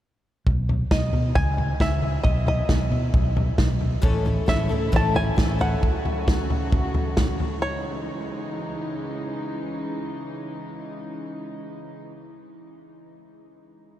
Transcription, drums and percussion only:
0.47 kick medium
0.47 floor tom medium
0.69 floor tom medium
0.91 kick medium
0.91 snare medium
0.91 floor tom medium
1.13 floor tom medium
1.36 kick medium
1.36 floor tom medium
1.58 floor tom medium
1.80 kick medium
1.80 snare loud
1.80 floor tom medium
2.02 floor tom medium
2.25 kick medium
2.25 floor tom medium
2.47 floor tom medium
2.69 kick loud
2.69 snare medium
2.69 floor tom medium
2.92 floor tom medium
3.14 kick medium
3.14 floor tom medium
3.37 floor tom medium
3.58 kick loud
3.58 snare medium
3.58 floor tom medium
3.81 floor tom medium
4.03 kick medium
4.03 floor tom medium
4.26 floor tom medium
4.48 kick medium
4.48 snare loud
4.48 floor tom medium
4.70 floor tom medium
4.93 kick loud
4.93 floor tom medium
5.15 floor tom medium
5.38 kick medium
5.38 snare loud
5.38 floor tom medium
5.61 floor tom medium
5.83 kick medium
5.83 floor tom medium
6.05 floor tom medium
6.28 kick loud
6.28 snare loud
6.28 floor tom medium
6.50 floor tom medium
6.72 kick loud
6.72 floor tom medium
6.94 floor tom medium
7.17 kick loud
7.17 snare loud
7.17 floor tom medium
7.40 floor tom medium

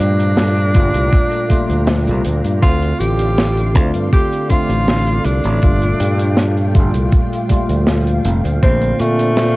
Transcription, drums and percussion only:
0.00 closed hi-hat loud
0.20 closed hi-hat medium
0.37 snare loud
0.37 closed hi-hat medium
0.57 closed hi-hat soft
0.75 kick loud
0.75 closed hi-hat medium
0.95 closed hi-hat medium
1.13 kick loud
1.13 closed hi-hat medium
1.32 closed hi-hat soft
1.50 kick medium
1.50 closed hi-hat medium
1.70 closed hi-hat medium
1.87 snare loud
1.87 closed hi-hat medium
2.07 closed hi-hat soft
2.25 closed hi-hat medium
2.44 closed hi-hat medium
2.63 kick loud
2.63 closed hi-hat medium
2.82 closed hi-hat soft
3.00 closed hi-hat medium
3.19 closed hi-hat medium
3.38 snare loud
3.38 closed hi-hat medium
3.57 closed hi-hat soft
3.75 kick loud
3.75 closed hi-hat loud
3.94 closed hi-hat medium
4.13 kick loud
4.13 closed hi-hat medium
4.32 closed hi-hat soft
4.50 kick medium
4.50 closed hi-hat medium
4.70 closed hi-hat medium
4.88 snare loud
4.88 closed hi-hat medium
5.07 closed hi-hat soft
5.24 closed hi-hat medium
5.44 closed hi-hat medium
5.62 kick loud
5.62 closed hi-hat medium
5.82 closed hi-hat soft
6.00 closed hi-hat loud
6.19 closed hi-hat medium
6.37 snare loud
6.37 closed hi-hat medium
6.57 closed hi-hat soft
6.75 kick loud
6.75 closed hi-hat loud
6.94 closed hi-hat medium
7.12 kick loud
7.12 closed hi-hat medium
7.33 closed hi-hat soft
7.50 kick medium
7.50 closed hi-hat loud
7.69 closed hi-hat medium
7.87 snare loud
7.87 closed hi-hat medium
8.07 closed hi-hat soft
8.25 closed hi-hat loud
8.45 closed hi-hat medium
8.63 kick loud
8.63 closed hi-hat medium
8.82 closed hi-hat soft
8.99 closed hi-hat medium
9.19 closed hi-hat medium
9.37 snare loud
9.37 closed hi-hat medium

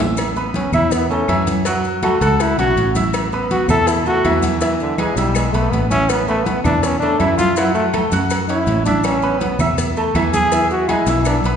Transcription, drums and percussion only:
0.00 cowbell medium
0.17 cowbell loud
0.17 high conga soft
0.17 low agogo loud
0.17 claves medium
0.17 maracas loud
0.36 high conga soft
0.36 low agogo medium
0.36 maracas soft
0.54 cowbell medium
0.54 high conga loud
0.54 low agogo medium
0.54 maracas soft
0.73 low conga medium
0.73 low agogo loud
0.73 claves medium
0.73 maracas medium
0.91 cowbell loud
0.91 high conga soft
0.91 maracas medium
1.10 high conga soft
1.10 low agogo medium
1.10 maracas soft
1.28 cowbell medium
1.28 high conga medium
1.28 low agogo loud
1.28 claves medium
1.28 maracas soft
1.47 cowbell medium
1.47 high conga medium
1.47 maracas medium
1.65 cowbell loud
1.65 high conga soft
1.65 low agogo medium
1.65 maracas medium
1.84 high conga soft
1.84 maracas soft
2.03 cowbell medium
2.03 high conga loud
2.03 low agogo loud
2.03 claves medium
2.03 maracas soft
2.21 cowbell medium
2.21 high conga soft
2.21 low agogo medium
2.21 maracas medium
2.40 cowbell loud
2.40 high conga soft
2.40 low agogo loud
2.40 claves medium
2.40 maracas medium
2.58 cowbell medium
2.58 high conga soft
2.58 maracas soft
2.77 cowbell medium
2.77 high conga soft
2.77 low agogo medium
2.77 maracas soft
2.95 cowbell medium
2.95 high conga loud
2.95 maracas medium
3.13 cowbell loud
3.13 high conga soft
3.13 low agogo loud
3.13 claves medium
3.13 maracas medium
3.32 high conga soft
3.32 low agogo medium
3.32 maracas soft
3.51 cowbell medium
3.51 high conga loud
3.51 low agogo medium
3.51 maracas soft
3.69 low conga loud
3.69 low agogo loud
3.69 claves medium
3.69 maracas medium
3.87 cowbell loud
3.87 high conga soft
3.87 maracas medium
4.06 high conga soft
4.06 low agogo medium
4.06 maracas soft
4.25 cowbell medium
4.25 high conga medium
4.25 low timbale medium
4.25 low agogo loud
4.25 claves medium
4.25 maracas soft
4.42 cowbell medium
4.42 high conga medium
4.42 maracas medium
4.61 cowbell loud
4.61 high conga soft
4.61 low agogo medium
4.61 maracas medium
4.80 high conga soft
4.80 maracas soft
4.98 cowbell medium
4.98 high conga loud
4.98 low agogo loud
4.98 claves medium
4.98 maracas soft
5.17 cowbell medium
5.17 high conga soft
5.17 low agogo medium
5.17 maracas medium
5.35 cowbell loud
5.35 high conga soft
5.35 low agogo loud
5.35 claves medium
5.35 maracas medium
5.54 cowbell medium
5.54 high conga soft
5.54 maracas soft
5.73 cowbell medium
5.73 high conga soft
5.73 low timbale medium
5.73 low agogo medium
5.73 maracas soft
5.91 cowbell medium
5.91 high conga medium
5.91 maracas medium
6.09 cowbell loud
6.09 high conga soft
6.09 low agogo loud
6.09 claves medium
6.09 maracas medium
6.27 high conga soft
6.27 low agogo medium
6.27 maracas soft
6.45 cowbell medium
6.45 high conga loud
6.45 low agogo medium
6.45 maracas soft
6.64 low conga loud
6.64 low agogo loud
6.64 claves medium
6.64 maracas medium
6.83 cowbell loud
6.83 high conga soft
6.83 maracas medium
7.02 high conga soft
7.02 low agogo medium
7.02 maracas soft
7.20 cowbell medium
7.20 high conga medium
7.20 low agogo medium
7.20 claves medium
7.20 maracas soft
7.38 cowbell medium
7.38 high conga medium
7.38 maracas medium
7.56 cowbell loud
7.56 high conga soft
7.56 low agogo medium
7.56 maracas medium
7.75 high conga soft
7.75 maracas soft
7.93 cowbell medium
7.93 high conga loud
7.93 low agogo loud
7.93 claves medium
7.93 maracas soft
8.12 cowbell medium
8.12 high conga soft
8.12 low agogo medium
8.12 maracas medium
8.30 cowbell loud
8.30 high conga soft
8.30 low agogo loud
8.30 claves medium
8.30 maracas medium
8.49 cowbell medium
8.49 high conga soft
8.49 maracas soft
8.66 cowbell medium
8.66 high conga soft
8.66 low timbale medium
8.66 low agogo medium
8.66 maracas soft
8.86 cowbell medium
8.86 high conga medium
8.86 maracas medium
9.04 cowbell loud
9.04 high conga soft
9.04 low agogo loud
9.04 claves medium
9.04 maracas loud
9.22 high conga soft
9.22 low agogo medium
9.22 maracas soft
9.40 cowbell medium
9.40 high conga loud
9.40 low agogo medium
9.40 maracas soft
9.59 low conga loud
9.59 low agogo loud
9.59 claves medium
9.59 maracas medium
9.78 cowbell loud
9.78 high conga soft
9.78 low conga medium
9.78 maracas loud
9.96 high conga soft
9.96 low agogo medium
9.96 maracas soft
10.15 cowbell medium
10.15 high conga medium
10.15 low agogo loud
10.15 claves medium
10.15 maracas soft
10.34 cowbell medium
10.34 high conga medium
10.34 maracas medium
10.52 cowbell loud
10.52 high conga soft
10.52 low agogo medium
10.52 maracas loud
10.70 high conga soft
10.70 maracas soft
10.89 cowbell medium
10.89 high conga medium
10.89 low agogo loud
10.89 claves medium
10.89 maracas soft
11.06 cowbell medium
11.06 high timbale medium
11.06 low agogo medium
11.06 maracas medium
11.25 cowbell loud
11.25 high conga soft
11.25 low agogo loud
11.25 claves medium
11.25 maracas medium
11.44 cowbell medium
11.44 maracas soft

